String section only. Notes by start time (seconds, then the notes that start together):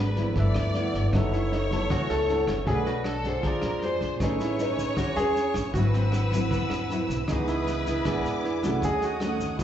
4.21 B4 G#5 C#6
5.74 F#5 E6
7.28 B4 D#6
8.05 B4 G#5 D6
8.82 C#5 F#5 D#6
9.60 C5 D#6